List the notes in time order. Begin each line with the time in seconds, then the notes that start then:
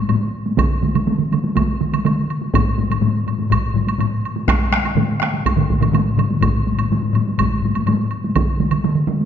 0.09 taiko low-mid, taiko high, high woodblock
0.46 taiko high
0.58 taiko, taiko mid, taiko high, high woodblock
0.82 taiko mid, taiko high
0.95 taiko mid, taiko high, high woodblock
1.07 taiko mid, taiko high
1.19 taiko mid
1.32 taiko mid, taiko high, high woodblock
1.44 taiko high
1.56 taiko, taiko mid, taiko high, high woodblock
1.81 taiko mid, taiko high
1.93 taiko mid, taiko high, high woodblock
2.05 taiko mid, taiko high, high woodblock
2.30 high woodblock
2.42 taiko high
2.54 taiko, taiko low-mid, taiko high, high woodblock
2.78 taiko low-mid, taiko high
2.90 taiko low-mid, taiko high, high woodblock
3.01 taiko low-mid, taiko high
3.27 taiko low-mid, taiko high, high woodblock
3.38 taiko low-mid, taiko high
3.50 taiko, taiko low-mid, taiko high, high woodblock
3.74 taiko low-mid, taiko high
3.87 taiko high, high woodblock
3.98 taiko low-mid, taiko high, high woodblock
4.25 high woodblock
4.36 taiko high
4.48 taiko rim, taiko, taiko high, high woodblock
4.72 taiko rim, taiko high
4.85 taiko high, high woodblock
4.95 taiko low-mid, taiko mid, taiko high
5.20 taiko rim, taiko high
5.22 taiko rim, high woodblock
5.34 taiko high
5.46 taiko, taiko high, high woodblock
5.56 taiko low-mid, taiko mid
5.70 taiko, taiko high
5.80 taiko low-mid, taiko mid, taiko high, high woodblock
5.92 taiko low-mid, taiko mid, taiko high, high woodblock
6.17 taiko low-mid, taiko mid, taiko high, high woodblock
6.31 taiko high
6.41 taiko, taiko low-mid, taiko high, high woodblock
6.65 taiko low-mid, taiko high
6.77 taiko low-mid, taiko high, high woodblock
6.90 taiko low-mid, taiko high
7.02 taiko low-mid
7.13 taiko low-mid, taiko high, high woodblock
7.29 taiko high
7.38 taiko, taiko low-mid, taiko high, high woodblock
7.62 taiko low-mid, taiko high
7.75 taiko low-mid, taiko high, high woodblock
7.86 taiko low-mid, taiko high, high woodblock
8.11 high woodblock
8.24 taiko high
8.35 taiko, taiko mid, taiko high, high woodblock
8.60 taiko mid, taiko high
8.71 taiko mid, taiko high, high woodblock
8.84 taiko mid, taiko high
8.95 taiko mid
9.07 taiko mid, taiko high
9.20 taiko high